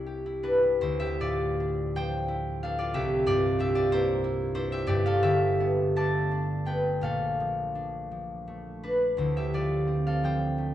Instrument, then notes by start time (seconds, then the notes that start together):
harp
Already playing: C2 G3 D4 E4 C5 D5 E5 G5
0.06 G4
0.26 E4
0.43 D4 B4
0.63 G3
0.81 D2 E4 C5
1.00 G4 E5
1.20 A2 F4 D5
1.60 D4
1.96 F3 C5 G5
2.28 E4
2.63 D4 A4 F5
2.79 F4 D5
2.94 C2 G4 E5
3.26 G2 F4 D5
3.59 D4 G4 E5
3.75 F4 D5
3.92 A#3 E4 C5
4.24 E4
4.54 D4 E4 C5
4.72 G4 E5
4.87 G1 G2 G4 D5
5.06 A4 F5
5.23 D3 G4 E5
5.60 B3
5.96 A3 D5 A5
6.31 D4
6.65 B3 B4 G5
7.01 A#1 A#2 A4 F5
7.40 F3
7.75 D4
8.11 F3
8.48 A3
8.83 D4 B4
9.17 D2 D3 E4 C5
9.37 G4 E5
9.53 F3 F4 D5
9.87 C4
10.07 A4 F5
10.24 F3 C5 G5
10.58 A3